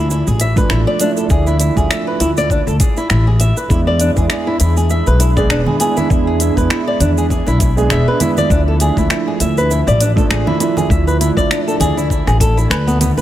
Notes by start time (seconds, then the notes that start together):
Already playing: D2 F3 A3 D4 E4
0.11 E4, shaker
0.27 A1 G#4, shaker
0.40 E5, closed hi-hat, shaker
0.56 F3 A3 D4 B4, kick, shaker
0.70 A1 E4, finger snap, shaker
0.87 D5
1.00 F3 A3 D4 E4, closed hi-hat, shaker
1.17 A4, shaker
1.29 D2 F3 A3 D4 E4 G#4, kick, shaker
1.47 E4, shaker
1.60 E4, closed hi-hat, shaker
1.75 D2 F3 A3 D4 E4 G#4, kick, shaker
1.90 E5, finger snap, shaker
2.07 B4
2.20 D2 E4, closed hi-hat, shaker
2.37 D5, shaker
2.50 D4, kick, shaker
2.67 D2 A4, shaker
2.80 G#4, kick, closed hi-hat, shaker
2.97 E4, shaker
3.10 A1 E4, finger snap, shaker
3.27 G#4
3.40 E5, closed hi-hat, shaker
3.57 B4, shaker
3.69 E2 G#3 B3 D4 E4 G#4 E5 B5, kick, shaker
3.87 D5
4.00 D4, closed hi-hat, shaker
4.15 E2 G#3 B3 D4 E4 G#4, kick, shaker
4.30 G#4, finger snap, shaker
4.47 E4
4.60 E2 E4, closed hi-hat, shaker
4.77 G#4, high conga, shaker
4.90 E5, shaker
5.07 B1 B4, shaker
5.20 E4, closed hi-hat, shaker
5.36 G#3 B3 D4 G#4 D5, kick, shaker
5.50 E1 D4, finger snap, shaker
5.66 G#4, high conga, low conga
5.80 G#3 B3 D4 E4 G#4, closed hi-hat, high bongo, shaker
5.97 E4, high bongo, low conga, shaker
6.09 E2 G#3 B3 D4 E4, kick, shaker
6.27 G#4
6.40 E5, closed hi-hat, shaker
6.55 E2 G#3 B3 D4 B4, kick, shaker
6.59 E4
6.70 E4, finger snap, shaker
6.88 D5
7.00 E2 D4, closed hi-hat, low conga, shaker
7.18 G#4, shaker
7.30 G#4, kick, shaker
7.47 B1 E4, high bongo, shaker
7.60 E4, kick, closed hi-hat, high conga, shaker
7.76 G#3 B3 D4 G#4, shaker
7.90 E1 E5, finger snap, shaker
8.08 B4
8.19 G#3 B3 D4 E4, closed hi-hat, high conga, low conga, shaker
8.37 D5, high conga, low conga, shaker
8.49 D2 F3 A3 D4 E4, kick, shaker
8.68 A4
8.80 G#4, closed hi-hat, shaker
8.95 D2 F3 A3 D4 E4, kick, shaker
8.99 E4
9.10 E4, finger snap, shaker
9.28 G#4
9.40 D2 E5, closed hi-hat, shaker
9.58 B4, high conga, shaker
9.71 E4, shaker
9.87 A1 D5, shaker
10.01 D4, closed hi-hat, shaker
10.16 F3 A3 D4 A4, kick, shaker
10.30 A1 G#4, finger snap, shaker
10.47 E4, high conga, low conga
10.60 F3 A3 D4 E4, closed hi-hat, high bongo, shaker
10.77 G#4, high bongo, low conga, shaker
10.90 D2 F3 A3 D4 E4 D5 E5, kick, shaker
11.07 B4, shaker
11.21 E4, closed hi-hat, shaker
11.35 D2 F3 A3 D4 E4 D5, kick, shaker
11.51 D4, finger snap, shaker
11.67 A4, shaker
11.80 D2 G#4, closed hi-hat, low conga, shaker
11.97 E4, shaker
12.10 E4, kick, shaker
12.27 A1 G#4, finger snap, high bongo, shaker
12.40 A4, kick, closed hi-hat, high conga, shaker
12.57 E4, high conga, shaker
12.70 D2 B4, finger snap, shaker
12.87 B3, shaker
13.01 B3, closed hi-hat, high conga, low conga, shaker
13.17 B4, high conga, low conga, shaker